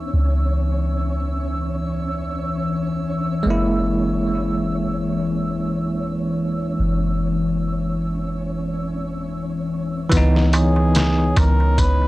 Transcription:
Already playing: E3 B3 C#4 D#4 C#5 E6
0.13 C#2
3.43 F#1 G#3
3.47 A#3 E4
6.79 F#1
10.09 C#2 E3 B3 C#5, kick, closed hi-hat, darbuka tek
10.17 D#4
10.35 snare, darbuka tek
10.53 G#4, closed hi-hat, darbuka tek
10.76 darbuka tek
10.95 snare, closed hi-hat, darbuka tek
11.18 darbuka tek
11.36 C#2 A#4, kick, closed hi-hat, darbuka tek
11.60 darbuka tek
11.78 B4, kick, closed hi-hat, darbuka tek
12.02 darbuka tek

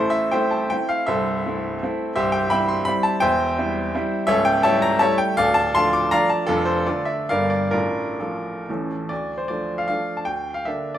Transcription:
Already playing: A1 A2 E4 A4 C5
0.10 E5
0.31 A3 C4 E4 C5 E5 G5
0.51 A5
0.70 A3 C4 E4 G5
0.89 F5
1.07 C1 C2 A4 C5 E5
1.46 A3 C4 E4
1.83 A3 C4 E4
2.16 C1 C2 G4 C5 E5
2.32 G5
2.50 G3 C4 E4 E5 G5 B5
2.68 C6
2.85 G3 C4 E4 B5
3.03 A5
3.20 E1 E2 C5 E5 G5
3.58 G3 C4 E4
3.95 G3 C4 E4
4.27 C#1 C#2 A4 C#5 E5
4.45 G5
4.63 G3 A3 E4 C#5 E5 A5
4.82 A#5
4.99 G3 A3 E4 C#5 E5 A5
5.18 G5
5.37 D1 D2 A4 D5 F5
5.54 A5
5.75 F3 A3 D4 F5 A5 C6
5.93 D6
6.11 F3 A3 D4 D5 F5 A#5
6.30 A5
6.47 F1 F2 D4 F4 A4
6.65 C5
6.87 D3 A3 D4 F4 A4 D5
7.05 E5
7.29 G1 G2 D3 A#3 D4 A#4 D5 F5
7.50 D5
7.71 A1 A2 D4 F4 A#4
8.20 F3 A3 D4 F4 A4
8.69 A1 A2 E3 A3 C#4
9.09 D2 D5
9.38 C5
9.48 F3 A3 D4 D5
9.78 F5
9.88 F3 A3 D4 F5
10.17 A5
10.25 D2 G5
10.54 F5
10.65 D3 A#3 D4 E5
10.95 D5

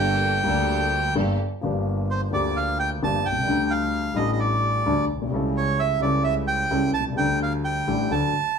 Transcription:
Already playing: G1 G2 G3 A#3 D4 G4 A4 G5
0.44 D2 D3 G3 A#3 D4 G4 A4
0.48 A4
1.15 G1 G2 G3 A#3 D4 G4 A4
1.61 G1 G2 F3 A#3 D4
1.65 G4
2.11 C5
2.31 D2 D3 F3 A#3 D4 G4 D5
2.57 F5
2.79 G5
3.02 G1 G2 F3 A#3 D4 G4 A5
3.26 C2 G5
3.32 B1
3.38 C2
3.43 C#2 G3
3.47 D2 D3 A3 D4 A4
3.71 F5
4.14 A1 A2 G3 A3 D4 A4 D#5
4.33 D#5
4.40 D5
4.85 D2 D3 G3 A3 D4 A4
5.09 B1
5.16 A#1
5.22 B1
5.27 C2
5.31 C#2 C#3 G3 C#4 E4
5.35 A4
5.57 C#5
5.80 E5
6.00 C#2 C#3 G3 C#4 E4 D5
6.05 A4
6.24 E5
6.47 G5
6.70 C#2 C#3 G3 C#4 E4 A4
6.93 C2 A5
7.00 B1
7.06 C2
7.12 C#2 D2 G3
7.17 D2 D3 A3 D4 A4 G5
7.43 F5
7.65 G5
7.87 A1 A2 G3 A3 D4 A4
8.10 D2 D3 F#3 A3 D4 A4 A5

